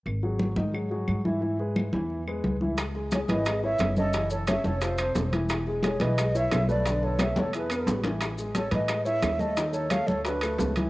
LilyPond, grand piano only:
\new Staff \with { instrumentName = "Grand piano" } { \time 4/4 \key cis \minor \tempo 4 = 176 r8 <fis fis' gis'>4 <dis dis' dis''>8 <fis fis' gis'>8 <fis fis' gis'>4 <e e' e''>8 | <e e' e''>8 <gis gis' b'>4 <e e' e''>4 <gis gis' b'>4 <e e' e''>8 | r8 <gis gis'>4 <e e'>8 <gis gis'>8 <e' e''>4 <cis' cis''>8 | <e e'>4 <cis' cis''>4 <f' f''>8 <c' c''>4 <e e'>8~ |
<e e'>8 <gis gis'>4 <e e'>8 <gis gis'>8 <e' e''>4 <a a'>8 | <d d'>4 <a a'>4 <e' e''>8 <b b'>4 <e e'>8~ | <e e'>8 <gis gis'>4 <e e'>8 <gis gis'>8 <e' e''>4 <a a'>8 | <ees ees'>4 <a a'>4 <d' d''>8 <a a'>4 <e e'>8 | }